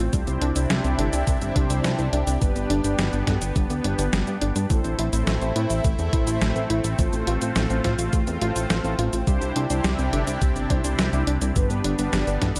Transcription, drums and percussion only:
0.13 kick, closed hi-hat, cabasa
0.27 closed hi-hat, cabasa
0.42 closed hi-hat
0.56 closed hi-hat, cabasa
0.70 snare, closed hi-hat, cabasa
0.84 closed hi-hat, cabasa
0.99 closed hi-hat
1.13 closed hi-hat, cabasa
1.27 kick, closed hi-hat, cabasa
1.42 closed hi-hat, cabasa
1.56 kick, closed hi-hat
1.70 closed hi-hat, cabasa
1.84 snare, closed hi-hat, cabasa
1.99 closed hi-hat, cabasa
2.13 closed hi-hat
2.27 closed hi-hat, cabasa
2.42 kick, closed hi-hat, cabasa
2.56 closed hi-hat, cabasa
2.70 closed hi-hat
2.84 closed hi-hat, cabasa
2.99 snare, closed hi-hat, cabasa
3.13 closed hi-hat, cabasa
3.27 kick, snare, closed hi-hat
3.42 closed hi-hat, cabasa
3.56 kick, closed hi-hat, cabasa
3.70 closed hi-hat, cabasa
3.84 closed hi-hat
3.99 closed hi-hat, cabasa
4.13 snare, closed hi-hat, cabasa
4.27 closed hi-hat, cabasa
4.42 closed hi-hat
4.56 closed hi-hat, cabasa
4.70 kick, closed hi-hat, cabasa
4.84 closed hi-hat, cabasa
4.99 closed hi-hat
5.13 closed hi-hat, cabasa
5.27 snare, closed hi-hat, cabasa
5.42 closed hi-hat, cabasa
5.56 closed hi-hat
5.70 closed hi-hat, cabasa
5.84 kick, closed hi-hat, cabasa
5.99 closed hi-hat, cabasa
6.13 kick, closed hi-hat
6.27 closed hi-hat, cabasa
6.42 snare, closed hi-hat, cabasa
6.56 closed hi-hat, cabasa
6.70 closed hi-hat
6.84 closed hi-hat, cabasa
6.99 kick, closed hi-hat, cabasa
7.13 closed hi-hat, cabasa
7.27 closed hi-hat
7.42 closed hi-hat, cabasa
7.56 snare, closed hi-hat, cabasa
7.70 closed hi-hat, cabasa
7.84 kick, snare, closed hi-hat
7.99 closed hi-hat, cabasa
8.13 kick, closed hi-hat, cabasa
8.27 closed hi-hat, cabasa
8.42 closed hi-hat
8.56 closed hi-hat, cabasa
8.70 snare, closed hi-hat, cabasa
8.84 closed hi-hat, cabasa
8.99 closed hi-hat
9.13 closed hi-hat, cabasa
9.27 kick, closed hi-hat, cabasa
9.42 closed hi-hat, cabasa
9.56 closed hi-hat
9.70 closed hi-hat, cabasa
9.84 snare, closed hi-hat, cabasa
9.99 closed hi-hat, cabasa
10.13 closed hi-hat
10.27 closed hi-hat, cabasa
10.42 kick, closed hi-hat, cabasa
10.56 closed hi-hat, cabasa
10.70 kick, closed hi-hat
10.84 closed hi-hat, cabasa
10.99 snare, closed hi-hat, cabasa
11.13 closed hi-hat, cabasa
11.27 closed hi-hat
11.42 closed hi-hat, cabasa
11.56 kick, closed hi-hat, cabasa
11.70 closed hi-hat, cabasa
11.84 closed hi-hat
11.99 closed hi-hat, cabasa
12.13 snare, closed hi-hat, cabasa
12.27 closed hi-hat, cabasa
12.42 kick, snare, closed hi-hat
12.56 closed hi-hat, cabasa

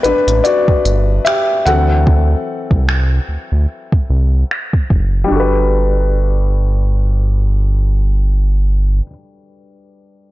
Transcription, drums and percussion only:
0.04 closed hi-hat
0.28 closed hi-hat
0.45 closed hi-hat
0.68 kick
0.85 closed hi-hat
1.26 finger snap, closed hi-hat
1.67 closed hi-hat
2.07 kick
2.71 kick
2.89 finger snap
3.92 kick
4.51 finger snap
4.73 kick
4.90 kick

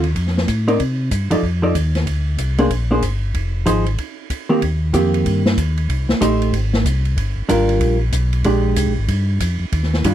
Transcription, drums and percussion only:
0.04 ride
0.16 kick, ride
0.27 snare
0.37 snare
0.48 kick, hi-hat pedal, ride
0.68 ride
0.80 kick, ride
1.11 kick, hi-hat pedal, ride
1.31 ride
1.43 kick
1.75 kick, hi-hat pedal, ride
1.95 snare, ride
2.07 kick, ride
2.38 kick, hi-hat pedal, ride
2.58 ride
2.70 kick, ride
3.02 kick, hi-hat pedal, ride
3.34 kick, ride
3.66 kick, hi-hat pedal, ride
3.86 ride
3.98 kick, ride
4.30 kick, hi-hat pedal, ride
4.62 kick, ride
4.94 kick, hi-hat pedal, ride
5.14 ride
5.26 kick, ride
5.46 snare
5.58 kick, hi-hat pedal, ride
5.77 ride
5.89 kick, ride
6.09 snare
6.21 kick, hi-hat pedal, ride
6.42 ride
6.53 kick, ride
6.73 snare
6.85 kick, hi-hat pedal, ride
7.05 ride
7.17 kick, ride
7.49 kick, hi-hat pedal, ride
7.69 ride
7.81 kick, ride
8.12 kick, hi-hat pedal, ride
8.33 ride
8.44 kick, ride
8.76 kick, hi-hat pedal, ride
9.08 kick, ride
9.40 kick, hi-hat pedal, ride
9.72 kick, ride
9.83 snare
9.94 snare
10.04 kick, hi-hat pedal, ride

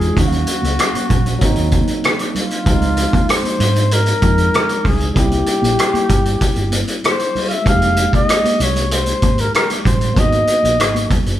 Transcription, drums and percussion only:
0.01 closed hi-hat
0.16 kick, closed hi-hat, muted conga, low conga
0.32 closed hi-hat, muted conga
0.47 closed hi-hat
0.62 closed hi-hat, high conga
0.79 cross-stick, closed hi-hat, muted conga
0.94 closed hi-hat, high conga
1.09 kick, closed hi-hat, low conga
1.26 closed hi-hat
1.41 kick, closed hi-hat
1.56 closed hi-hat, muted conga
1.71 kick, closed hi-hat, high conga
1.87 closed hi-hat
2.04 cross-stick, closed hi-hat
2.19 cross-stick, closed hi-hat
2.35 closed hi-hat, low conga
2.50 closed hi-hat
2.66 kick, closed hi-hat, low conga
2.82 closed hi-hat, muted conga
2.97 closed hi-hat
3.13 kick, closed hi-hat, high conga
3.29 cross-stick, closed hi-hat, muted conga
3.44 closed hi-hat, high conga
3.59 closed hi-hat, low conga
3.76 closed hi-hat
3.91 closed hi-hat
4.06 closed hi-hat, muted conga
4.22 kick, closed hi-hat, high conga
4.38 closed hi-hat
4.53 cross-stick, closed hi-hat, muted conga
4.69 closed hi-hat, muted conga
4.85 kick, open hi-hat, low conga
5.00 closed hi-hat
5.15 kick, closed hi-hat, low conga
5.31 closed hi-hat, muted conga
5.46 closed hi-hat
5.62 closed hi-hat, high conga
5.79 cross-stick, closed hi-hat, muted conga
5.94 closed hi-hat, muted conga, high conga
6.09 kick, closed hi-hat, low conga
6.25 closed hi-hat
6.41 kick, closed hi-hat, muted conga
6.56 closed hi-hat, muted conga
6.72 closed hi-hat, high conga
6.87 closed hi-hat
7.04 cross-stick, closed hi-hat, high conga
7.19 closed hi-hat
7.35 open hi-hat, low conga
7.50 closed hi-hat
7.66 kick, closed hi-hat, low conga
7.82 closed hi-hat, muted conga
7.96 closed hi-hat
8.13 kick, closed hi-hat, high conga
8.29 cross-stick, closed hi-hat
8.44 closed hi-hat, muted conga, high conga
8.60 closed hi-hat, low conga
8.76 closed hi-hat
8.91 closed hi-hat, muted conga
9.06 closed hi-hat, muted conga
9.22 kick, closed hi-hat, high conga
9.38 closed hi-hat
9.54 cross-stick, closed hi-hat
9.70 cross-stick, closed hi-hat, muted conga
9.85 kick, closed hi-hat, low conga
10.01 closed hi-hat
10.16 kick, closed hi-hat, low conga
10.32 closed hi-hat, muted conga
10.47 closed hi-hat
10.63 closed hi-hat, high conga
10.80 cross-stick, closed hi-hat
10.95 closed hi-hat, muted conga, high conga
11.09 kick, closed hi-hat, low conga
11.26 closed hi-hat

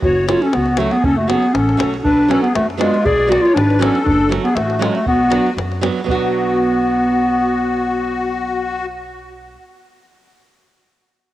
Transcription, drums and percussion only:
0.02 davul low
0.29 davul high
0.42 davul high
0.53 davul high
0.66 davul high
0.77 davul high
0.91 davul high
1.04 davul low
1.29 davul high
1.42 davul high
1.55 davul high
1.69 davul high
1.80 davul high
1.94 davul high
2.05 davul low
2.31 davul high
2.44 davul high
2.55 davul high
2.70 davul high
2.81 davul high
2.94 davul high
3.07 davul low
3.32 davul high
3.46 davul high
3.57 davul high
3.70 davul high
3.83 davul high
3.95 davul high
4.07 davul low
4.32 davul high
4.45 davul high
4.57 davul high
4.70 davul high
4.82 davul high
4.95 davul high
5.07 davul low
5.32 davul high
5.47 davul high
5.58 davul high
5.72 davul high
5.83 davul high
6.08 davul low

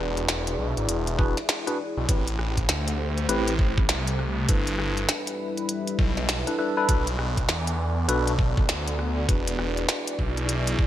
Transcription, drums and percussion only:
0.17 closed hi-hat
0.29 cross-stick, snare, closed hi-hat
0.47 closed hi-hat
0.77 closed hi-hat
0.89 closed hi-hat
1.07 closed hi-hat
1.19 kick
1.37 snare, closed hi-hat
1.49 snare, closed hi-hat
1.67 closed hi-hat
2.09 kick, closed hi-hat
2.28 closed hi-hat
2.39 cross-stick
2.57 kick, closed hi-hat
2.69 snare, closed hi-hat
2.88 closed hi-hat
3.18 closed hi-hat
3.29 closed hi-hat
3.48 closed hi-hat
3.59 kick
3.78 kick
3.89 snare, closed hi-hat
4.07 closed hi-hat
4.19 cross-stick
4.49 kick, closed hi-hat
4.67 closed hi-hat
4.79 cross-stick
4.97 closed hi-hat
5.09 cross-stick, snare, closed hi-hat
5.27 closed hi-hat
5.58 closed hi-hat
5.69 closed hi-hat
5.88 closed hi-hat
5.99 kick
6.17 snare
6.29 snare, closed hi-hat
6.47 closed hi-hat
6.89 kick, closed hi-hat
7.07 closed hi-hat
7.19 cross-stick
7.37 kick, closed hi-hat
7.49 snare
7.67 closed hi-hat
8.09 closed hi-hat
8.27 closed hi-hat
8.39 kick
8.57 kick
8.69 snare, closed hi-hat
8.88 closed hi-hat
8.99 cross-stick
9.29 kick, closed hi-hat
9.48 closed hi-hat
9.59 cross-stick
9.77 closed hi-hat
9.89 cross-stick, snare, closed hi-hat
10.08 closed hi-hat
10.19 kick
10.37 closed hi-hat
10.49 closed hi-hat
10.67 closed hi-hat
10.79 kick

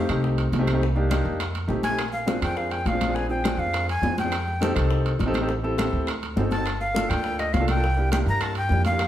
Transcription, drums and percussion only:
0.09 high bongo, high conga, high timbale, claves
0.24 high bongo, high conga
0.38 high bongo, high conga, high timbale
0.53 high bongo, low bongo, high conga, high timbale, low timbale
0.67 high conga, high timbale, claves
0.82 high bongo, high conga
0.96 high bongo, high conga
1.11 high bongo, high conga, high timbale, claves
1.25 high bongo, high conga
1.40 high bongo, high conga, high timbale, claves
1.55 high bongo, high conga, high timbale
1.69 high bongo, low bongo, high conga
1.83 high conga, high timbale
1.99 high bongo, high conga, high timbale, claves
2.13 high bongo, high conga
2.28 high bongo, high conga, high timbale
2.42 high bongo, high conga, high timbale, claves
2.57 high bongo, high conga
2.71 high bongo, high conga, high timbale
2.86 high bongo, low bongo, high conga, high timbale
3.01 high conga, high timbale, claves
3.16 high bongo, high conga
3.31 high bongo, high conga
3.44 high bongo, high conga, high timbale, claves
3.59 high bongo, high conga
3.73 high bongo, high conga, high timbale, claves
3.89 high bongo, high conga, high timbale
4.03 high bongo, low bongo, high conga, low timbale
4.18 high conga, high timbale
4.32 high bongo, high conga, high timbale, claves
4.47 high bongo, high conga
4.62 high bongo, high conga, high timbale
4.76 high bongo, high conga, high timbale, claves
4.91 high bongo, high conga
5.05 high bongo, high conga, high timbale
5.19 high bongo, low bongo, high conga, high timbale
5.34 high conga, high timbale, claves
5.49 high bongo, high conga
5.64 high bongo, high conga
5.78 high bongo, high conga, high timbale, claves
5.93 high bongo, high conga
6.07 high bongo, high conga, high timbale, claves
6.22 high bongo, high conga, high timbale
6.37 high bongo, low bongo, high conga, low timbale
6.51 high conga, high timbale
6.66 high bongo, high conga, high timbale, claves
6.81 high bongo, high conga
6.95 high bongo, high conga, high timbale
7.10 high bongo, high conga, high timbale, claves
7.24 high bongo, high conga
7.39 high bongo, high conga, high timbale
7.54 high bongo, low bongo, high conga, high timbale, low timbale
7.68 high conga, high timbale, claves
7.84 high bongo, high conga
7.97 high bongo, high conga
8.12 high bongo, high conga, high timbale, claves
8.27 high bongo, high conga
8.41 high bongo, high conga, high timbale, claves
8.55 high bongo, high conga, high timbale
8.69 high bongo, low bongo, high conga
8.85 high conga, high timbale
8.99 high bongo, high conga, high timbale, claves

